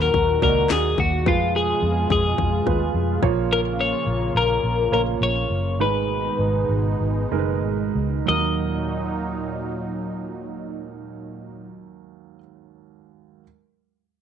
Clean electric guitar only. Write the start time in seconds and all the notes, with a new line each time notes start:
0.02 A#4
0.43 A#4
0.72 G#4
1.00 F#4
1.28 F4
1.56 G#4
2.12 G#4
3.53 A#4
3.81 C#5
4.37 A#4
4.94 A#4
5.23 C#5
5.81 B4
8.29 D#5